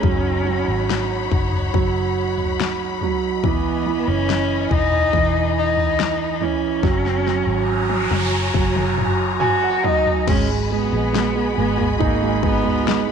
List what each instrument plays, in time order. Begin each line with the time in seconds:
Already playing: cello C#4, string section D#4 B5
0.02 fingered electric bass F#1, grand piano F#3, string section C#5 F#5, kick, floor tom
0.46 grand piano F#3
0.68 fingered electric bass G#1
0.90 snare
1.32 fingered electric bass F#1, kick
1.53 floor tom
1.74 fingered electric bass F#1, grand piano F#3, kick
2.38 floor tom
2.60 snare
3.01 grand piano F#3, floor tom
3.43 fingered electric bass E1, string section E3 D#5 G#5, grand piano E3, cello B3, kick, floor tom
3.86 grand piano E3
4.08 fingered electric bass F#1, cello C#4
4.30 snare
4.71 fingered electric bass E1, cello D#4, kick
4.92 floor tom
5.13 fingered electric bass E1, grand piano E3, kick
5.58 cello D#4
5.77 floor tom
6.00 snare
6.41 grand piano E3, cello C#4, floor tom
6.83 fingered electric bass F#1, grand piano F#3, string section F#4 C#5 G#5 A#5, kick, snare, noise sweep
7.06 snare
7.26 grand piano F#3, snare
7.47 fingered electric bass G#1
7.90 high tom
8.11 fingered electric bass F#1, high tom
8.54 fingered electric bass F#1, grand piano F#3, kick
8.76 mid tom
8.98 mid tom
9.40 cello F#4, grand piano G#5, mid tom
9.62 grand piano F#5
9.84 grand piano F#3 D#5, cello D#4, floor tom
10.06 floor tom
10.28 fingered electric bass G#1, grand piano G#3, cello C#4, string section F#4 D#5 G#5 B5, kick, floor tom, crash
10.49 grand piano G#3
10.70 grand piano G#3, cello B3
10.92 fingered electric bass A#1, grand piano G#3
11.13 grand piano G#3, snare
11.34 grand piano G#3
11.56 fingered electric bass G#1, grand piano G#3, cello B3
11.78 grand piano G#3, floor tom
11.99 fingered electric bass G#1, cello A#3, grand piano D#4, kick, floor tom
12.21 grand piano G#3
12.43 grand piano G#3, cello B3, kick
12.64 grand piano G#3, floor tom
12.86 grand piano G#3, snare
13.07 grand piano G#3